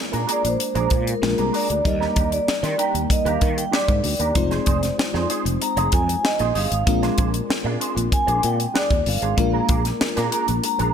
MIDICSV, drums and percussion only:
0, 0, Header, 1, 2, 480
1, 0, Start_track
1, 0, Tempo, 626959
1, 1418, Time_signature, 4, 2, 24, 8
1, 8372, End_track
2, 0, Start_track
2, 0, Title_t, "Drums"
2, 102, Note_on_c, 9, 42, 34
2, 179, Note_off_c, 9, 42, 0
2, 220, Note_on_c, 9, 42, 77
2, 296, Note_off_c, 9, 42, 0
2, 342, Note_on_c, 9, 42, 55
2, 419, Note_off_c, 9, 42, 0
2, 460, Note_on_c, 9, 42, 86
2, 536, Note_off_c, 9, 42, 0
2, 577, Note_on_c, 9, 42, 36
2, 654, Note_off_c, 9, 42, 0
2, 691, Note_on_c, 9, 42, 64
2, 697, Note_on_c, 9, 36, 86
2, 768, Note_off_c, 9, 42, 0
2, 774, Note_off_c, 9, 36, 0
2, 822, Note_on_c, 9, 42, 50
2, 899, Note_off_c, 9, 42, 0
2, 943, Note_on_c, 9, 38, 106
2, 1019, Note_off_c, 9, 38, 0
2, 1057, Note_on_c, 9, 42, 35
2, 1133, Note_off_c, 9, 42, 0
2, 1180, Note_on_c, 9, 46, 75
2, 1257, Note_off_c, 9, 46, 0
2, 1302, Note_on_c, 9, 42, 44
2, 1379, Note_off_c, 9, 42, 0
2, 1418, Note_on_c, 9, 36, 113
2, 1419, Note_on_c, 9, 42, 82
2, 1495, Note_off_c, 9, 36, 0
2, 1496, Note_off_c, 9, 42, 0
2, 1544, Note_on_c, 9, 38, 33
2, 1621, Note_off_c, 9, 38, 0
2, 1655, Note_on_c, 9, 42, 60
2, 1658, Note_on_c, 9, 36, 89
2, 1731, Note_off_c, 9, 42, 0
2, 1734, Note_off_c, 9, 36, 0
2, 1777, Note_on_c, 9, 42, 52
2, 1854, Note_off_c, 9, 42, 0
2, 1902, Note_on_c, 9, 38, 106
2, 1978, Note_off_c, 9, 38, 0
2, 2018, Note_on_c, 9, 42, 36
2, 2020, Note_on_c, 9, 38, 37
2, 2095, Note_off_c, 9, 42, 0
2, 2097, Note_off_c, 9, 38, 0
2, 2136, Note_on_c, 9, 42, 80
2, 2213, Note_off_c, 9, 42, 0
2, 2259, Note_on_c, 9, 42, 54
2, 2336, Note_off_c, 9, 42, 0
2, 2373, Note_on_c, 9, 36, 89
2, 2379, Note_on_c, 9, 42, 83
2, 2450, Note_off_c, 9, 36, 0
2, 2455, Note_off_c, 9, 42, 0
2, 2497, Note_on_c, 9, 42, 36
2, 2574, Note_off_c, 9, 42, 0
2, 2613, Note_on_c, 9, 42, 64
2, 2616, Note_on_c, 9, 36, 88
2, 2689, Note_off_c, 9, 42, 0
2, 2693, Note_off_c, 9, 36, 0
2, 2740, Note_on_c, 9, 42, 49
2, 2816, Note_off_c, 9, 42, 0
2, 2859, Note_on_c, 9, 38, 99
2, 2936, Note_off_c, 9, 38, 0
2, 2974, Note_on_c, 9, 36, 84
2, 2974, Note_on_c, 9, 42, 34
2, 3050, Note_off_c, 9, 42, 0
2, 3051, Note_off_c, 9, 36, 0
2, 3091, Note_on_c, 9, 46, 75
2, 3168, Note_off_c, 9, 46, 0
2, 3213, Note_on_c, 9, 42, 45
2, 3290, Note_off_c, 9, 42, 0
2, 3332, Note_on_c, 9, 42, 86
2, 3334, Note_on_c, 9, 36, 115
2, 3409, Note_off_c, 9, 42, 0
2, 3410, Note_off_c, 9, 36, 0
2, 3454, Note_on_c, 9, 42, 33
2, 3456, Note_on_c, 9, 38, 35
2, 3531, Note_off_c, 9, 42, 0
2, 3532, Note_off_c, 9, 38, 0
2, 3569, Note_on_c, 9, 42, 63
2, 3575, Note_on_c, 9, 36, 93
2, 3646, Note_off_c, 9, 42, 0
2, 3652, Note_off_c, 9, 36, 0
2, 3697, Note_on_c, 9, 42, 53
2, 3703, Note_on_c, 9, 38, 37
2, 3773, Note_off_c, 9, 42, 0
2, 3779, Note_off_c, 9, 38, 0
2, 3823, Note_on_c, 9, 38, 111
2, 3900, Note_off_c, 9, 38, 0
2, 3941, Note_on_c, 9, 38, 35
2, 4018, Note_off_c, 9, 38, 0
2, 4057, Note_on_c, 9, 42, 79
2, 4133, Note_off_c, 9, 42, 0
2, 4182, Note_on_c, 9, 42, 51
2, 4258, Note_off_c, 9, 42, 0
2, 4299, Note_on_c, 9, 42, 78
2, 4376, Note_off_c, 9, 42, 0
2, 4417, Note_on_c, 9, 42, 38
2, 4494, Note_off_c, 9, 42, 0
2, 4532, Note_on_c, 9, 42, 70
2, 4538, Note_on_c, 9, 36, 90
2, 4609, Note_off_c, 9, 42, 0
2, 4614, Note_off_c, 9, 36, 0
2, 4664, Note_on_c, 9, 42, 50
2, 4741, Note_off_c, 9, 42, 0
2, 4783, Note_on_c, 9, 38, 105
2, 4859, Note_off_c, 9, 38, 0
2, 4894, Note_on_c, 9, 42, 34
2, 4971, Note_off_c, 9, 42, 0
2, 5017, Note_on_c, 9, 46, 71
2, 5094, Note_off_c, 9, 46, 0
2, 5143, Note_on_c, 9, 42, 48
2, 5219, Note_off_c, 9, 42, 0
2, 5259, Note_on_c, 9, 36, 116
2, 5259, Note_on_c, 9, 42, 85
2, 5335, Note_off_c, 9, 42, 0
2, 5336, Note_off_c, 9, 36, 0
2, 5383, Note_on_c, 9, 42, 34
2, 5385, Note_on_c, 9, 38, 32
2, 5459, Note_off_c, 9, 42, 0
2, 5461, Note_off_c, 9, 38, 0
2, 5495, Note_on_c, 9, 42, 61
2, 5500, Note_on_c, 9, 36, 97
2, 5571, Note_off_c, 9, 42, 0
2, 5576, Note_off_c, 9, 36, 0
2, 5619, Note_on_c, 9, 42, 55
2, 5695, Note_off_c, 9, 42, 0
2, 5745, Note_on_c, 9, 38, 100
2, 5822, Note_off_c, 9, 38, 0
2, 5982, Note_on_c, 9, 42, 79
2, 6059, Note_off_c, 9, 42, 0
2, 6105, Note_on_c, 9, 42, 52
2, 6182, Note_off_c, 9, 42, 0
2, 6218, Note_on_c, 9, 36, 91
2, 6220, Note_on_c, 9, 42, 83
2, 6295, Note_off_c, 9, 36, 0
2, 6296, Note_off_c, 9, 42, 0
2, 6340, Note_on_c, 9, 42, 37
2, 6417, Note_off_c, 9, 42, 0
2, 6456, Note_on_c, 9, 42, 68
2, 6532, Note_off_c, 9, 42, 0
2, 6583, Note_on_c, 9, 42, 50
2, 6660, Note_off_c, 9, 42, 0
2, 6703, Note_on_c, 9, 38, 106
2, 6779, Note_off_c, 9, 38, 0
2, 6817, Note_on_c, 9, 42, 36
2, 6818, Note_on_c, 9, 36, 90
2, 6893, Note_off_c, 9, 42, 0
2, 6895, Note_off_c, 9, 36, 0
2, 6939, Note_on_c, 9, 46, 73
2, 7015, Note_off_c, 9, 46, 0
2, 7061, Note_on_c, 9, 42, 44
2, 7137, Note_off_c, 9, 42, 0
2, 7179, Note_on_c, 9, 42, 89
2, 7180, Note_on_c, 9, 36, 115
2, 7255, Note_off_c, 9, 42, 0
2, 7256, Note_off_c, 9, 36, 0
2, 7416, Note_on_c, 9, 42, 65
2, 7420, Note_on_c, 9, 36, 100
2, 7492, Note_off_c, 9, 42, 0
2, 7496, Note_off_c, 9, 36, 0
2, 7542, Note_on_c, 9, 42, 53
2, 7548, Note_on_c, 9, 38, 37
2, 7618, Note_off_c, 9, 42, 0
2, 7625, Note_off_c, 9, 38, 0
2, 7664, Note_on_c, 9, 38, 107
2, 7740, Note_off_c, 9, 38, 0
2, 7785, Note_on_c, 9, 42, 36
2, 7787, Note_on_c, 9, 38, 37
2, 7861, Note_off_c, 9, 42, 0
2, 7863, Note_off_c, 9, 38, 0
2, 7903, Note_on_c, 9, 42, 80
2, 7979, Note_off_c, 9, 42, 0
2, 8023, Note_on_c, 9, 42, 51
2, 8100, Note_off_c, 9, 42, 0
2, 8142, Note_on_c, 9, 42, 82
2, 8219, Note_off_c, 9, 42, 0
2, 8263, Note_on_c, 9, 42, 37
2, 8340, Note_off_c, 9, 42, 0
2, 8372, End_track
0, 0, End_of_file